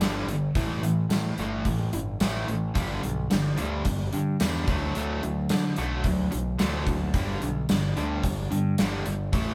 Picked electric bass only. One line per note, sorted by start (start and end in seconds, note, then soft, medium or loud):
0.00 0.23 G1 medium
0.27 0.50 G1 medium
0.55 0.78 A1 medium
0.82 1.05 A1 medium
1.09 1.33 A2 medium
1.39 1.61 G1 medium
1.65 1.88 A1 medium
1.94 2.16 G1 medium
2.21 2.44 A1 medium
2.48 2.71 A1 medium
2.76 2.99 G1 medium
3.04 3.26 B1 medium
3.33 3.55 G1 medium
3.60 3.82 D2 medium
3.85 4.08 G1 medium
4.13 4.36 G2 medium
4.41 4.64 E2 medium
4.68 4.91 D2 medium
4.97 5.19 D2 medium
5.24 5.46 D2 medium
5.51 5.73 D3 medium
5.78 6.01 B1 medium
6.04 6.27 D2 medium
6.34 6.56 B1 medium
6.60 6.83 D2 medium
6.87 7.10 D2 medium
7.14 7.37 G1 medium
7.43 7.65 B1 medium
7.70 7.92 G1 medium
7.97 8.19 D2 medium
8.24 8.47 G1 medium
8.52 8.74 G2 medium
8.80 9.02 G1 medium
9.07 9.29 G1 medium
9.33 9.54 A1 medium